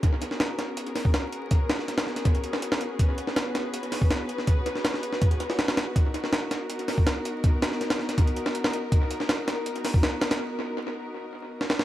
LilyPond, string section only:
\new Staff \with { instrumentName = "String section" } { \time 4/4 \key gis \minor \tempo 4 = 162 << { ais'1~ | ais'1 | b'1~ | b'1 |
ais'1~ | ais'1~ | ais'1~ | ais'1 | } \\ { <b cis' fis' gis'>1~ | <b cis' fis' gis'>1~ | <b cis' fis' gis'>1~ | <b cis' fis' gis'>1 |
<b dis'>1~ | <b dis'>1~ | <b dis'>1~ | <b dis'>1 | } >> }